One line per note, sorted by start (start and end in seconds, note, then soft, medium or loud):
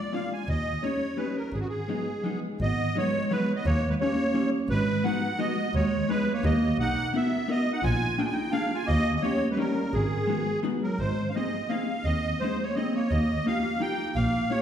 0.00 0.15 D5 medium
0.12 0.32 G#3 medium
0.12 0.32 A#3 soft
0.12 0.32 D4 soft
0.12 0.33 F4 medium
0.12 0.33 F5 medium
0.33 0.49 G#5 medium
0.48 0.56 D#2 medium
0.48 0.84 D#5 medium
0.82 1.02 G3 soft
0.82 1.02 A#3 soft
0.82 1.02 C#4 soft
0.82 1.02 D#4 soft
0.82 1.19 C#5 medium
1.17 1.36 G3 medium
1.17 1.37 A#3 soft
1.17 1.37 C#4 medium
1.17 1.37 D#4 medium
1.17 1.37 B4 medium
1.36 1.53 A#4 medium
1.53 1.61 G#1 medium
1.53 1.60 G#4 medium
1.60 1.68 F#4 medium
1.69 2.40 G#4 medium
1.88 2.08 F#3 soft
1.88 2.08 G#3 soft
1.88 2.08 B3 soft
1.88 2.08 D#4 medium
2.23 2.43 F#3 medium
2.23 2.44 G#3 medium
2.23 2.44 B3 medium
2.23 2.44 D#4 medium
2.59 2.69 G#1 medium
2.59 2.92 B3 medium
2.59 2.97 D#5 loud
2.96 3.15 F#3 soft
2.96 3.15 G#3 soft
2.96 3.29 G#3 medium
2.96 3.15 B3 medium
2.96 3.15 D#4 medium
2.96 3.33 C#5 loud
3.31 3.50 F#3 medium
3.31 3.50 G#3 medium
3.31 3.54 G#3 medium
3.31 3.50 B3 medium
3.31 3.50 D#4 medium
3.31 3.53 B4 medium
3.56 3.65 B3 medium
3.56 3.65 D#5 medium
3.66 3.74 D#2 loud
3.66 3.88 A#3 medium
3.66 3.89 C#5 loud
3.90 3.95 G#3 medium
3.90 3.95 B4 medium
4.00 4.20 G3 soft
4.00 4.50 A#3 medium
4.00 4.20 A#3 medium
4.00 4.20 C#4 medium
4.00 4.20 D#4 medium
4.00 4.50 C#5 loud
4.34 4.53 G3 medium
4.34 4.53 A#3 medium
4.34 4.54 C#4 medium
4.34 4.54 D#4 medium
4.69 4.77 G#1 medium
4.69 5.02 G#3 medium
4.69 5.05 B4 loud
5.04 5.23 G#3 medium
5.04 5.23 B3 soft
5.04 5.23 D#4 soft
5.04 5.37 D#4 medium
5.04 5.24 F#4 medium
5.04 5.40 F#5 medium
5.39 5.58 G#3 medium
5.39 5.58 B3 medium
5.39 5.72 B3 medium
5.39 5.58 D#4 medium
5.39 5.58 F#4 medium
5.39 5.75 D#5 loud
5.72 5.82 D#2 medium
5.72 6.05 G#3 medium
5.72 6.10 C#5 medium
6.09 6.28 G#3 medium
6.09 6.31 G#3 medium
6.09 6.28 B3 soft
6.09 6.28 D#4 medium
6.09 6.29 G#4 soft
6.09 6.33 B4 loud
6.33 6.44 A#3 medium
6.33 6.45 C#5 medium
6.44 6.52 D#2 medium
6.44 6.63 A#3 medium
6.44 6.78 A#3 medium
6.44 6.63 D#4 medium
6.44 6.64 G4 medium
6.44 6.64 A#4 medium
6.44 6.77 D#5 loud
6.78 6.86 B1 medium
6.78 7.13 D#4 medium
6.78 7.16 F#5 loud
7.13 7.33 B3 medium
7.13 7.47 B3 medium
7.13 7.34 D#4 soft
7.13 7.34 F#4 soft
7.13 7.34 A#4 soft
7.13 7.51 E5 medium
7.48 7.68 B3 medium
7.48 7.71 B3 medium
7.48 7.68 D#4 medium
7.48 7.68 F#4 medium
7.48 7.69 A#4 medium
7.48 7.72 D#5 loud
7.73 7.82 D#4 medium
7.73 7.85 F#5 medium
7.82 7.91 A#1 medium
7.82 8.15 F4 medium
7.82 8.20 G#5 loud
8.17 8.38 A#3 medium
8.17 8.25 D4 medium
8.17 8.38 D4 soft
8.17 8.38 F4 soft
8.17 8.38 G#4 medium
8.17 8.26 G5 medium
8.25 8.31 F4 medium
8.25 8.34 G#5 medium
8.32 8.51 D#4 medium
8.32 8.53 G5 medium
8.51 8.72 A#3 medium
8.51 8.73 D4 medium
8.51 8.72 D4 soft
8.51 8.73 F4 medium
8.51 8.73 G#4 medium
8.51 8.77 F5 loud
8.74 8.85 F4 medium
8.74 8.88 G#5 medium
8.86 8.97 D#2 medium
8.86 9.13 A#3 medium
8.86 9.14 D#5 loud
9.15 9.20 B3 soft
9.15 9.23 D#5 medium
9.21 9.48 A#3 medium
9.21 9.42 A#3 soft
9.21 9.42 C#4 medium
9.21 9.42 D#4 soft
9.21 9.49 C#5 loud
9.25 9.43 G4 medium
9.51 9.55 G#3 medium
9.51 9.58 B4 medium
9.56 9.89 G3 medium
9.56 9.77 A#3 medium
9.56 9.77 C#4 medium
9.56 9.77 D#4 medium
9.56 9.77 G4 medium
9.56 9.95 A#4 medium
9.92 10.02 G#1 medium
9.92 10.60 D#3 medium
9.92 10.60 G#4 medium
10.27 10.47 G#3 medium
10.27 10.47 B3 soft
10.27 10.48 D#4 soft
10.27 10.48 F#4 soft
10.63 10.83 G#3 medium
10.63 10.83 B3 medium
10.63 10.84 D#4 medium
10.63 10.84 F#4 medium
10.82 10.98 F#3 medium
10.82 11.00 A#4 medium
10.99 11.07 G#1 medium
10.99 11.26 G#3 medium
10.99 11.30 C5 medium
11.28 11.32 C#4 soft
11.28 11.36 F5 medium
11.33 11.55 A#3 soft
11.33 11.67 C4 medium
11.33 11.55 C4 soft
11.33 11.55 D#4 soft
11.33 11.72 D#5 medium
11.37 11.56 G#4 medium
11.69 11.89 A#3 medium
11.69 12.03 C4 medium
11.69 11.90 C4 medium
11.69 11.90 D#4 medium
11.69 11.90 G#4 medium
11.69 12.06 F5 medium
12.04 12.13 D#2 medium
12.04 12.38 C4 medium
12.04 12.41 D#5 loud
12.40 12.62 G#3 medium
12.40 12.60 A#3 soft
12.40 12.61 C4 soft
12.40 12.61 D#4 soft
12.40 12.61 G#4 medium
12.40 12.64 C5 medium
12.63 12.75 A#3 medium
12.63 12.75 C#5 medium
12.75 12.95 A#3 medium
12.75 12.95 C4 medium
12.75 12.94 C4 medium
12.75 12.95 D#4 medium
12.75 12.96 G#4 medium
12.75 12.95 D#5 medium
12.95 13.10 A#3 medium
12.95 13.11 C#5 medium
13.10 13.19 D#2 medium
13.10 13.43 A#3 medium
13.10 13.46 D#5 medium
13.44 13.77 A#3 medium
13.44 13.65 A#3 medium
13.44 13.65 D#4 medium
13.44 13.65 F4 medium
13.44 13.82 F5 loud
13.48 13.66 G4 medium
13.79 13.99 A#3 medium
13.79 14.12 D#4 medium
13.79 14.00 D#4 medium
13.79 14.00 F4 medium
13.79 14.00 G4 medium
13.79 14.17 G5 loud
14.15 14.24 A#1 medium
14.15 14.48 A#3 medium
14.15 14.52 F5 loud
14.50 14.62 A#3 soft
14.50 14.62 A#3 medium
14.50 14.62 D#4 soft
14.50 14.62 F4 soft
14.50 14.62 G4 soft
14.50 14.62 C#5 loud